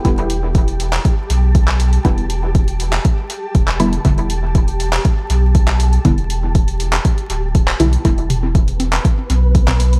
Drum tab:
HH |xxo-xxo-x-o-x-ox|xxo-xxo-x-o-x-ox|xxo-xxo-x-o-x-ox|xxo-xxoxxxo-xxox|
CP |-------x-----x--|-------x-----x--|-------x-----x--|-------x-----x--|
T2 |----------------|----------------|----------------|----------------|
CG |----------------|----------------|----------------|----------------|
BD |o---o---o---o---|o---o---o---o---|o---o---o---o---|o---o---o---o---|

HH |xxo-xxo-x-o-x-ox|
CP |-------x-----x--|
T2 |--o----------o--|
CG |---o--o---o--o--|
BD |o---o---o---o---|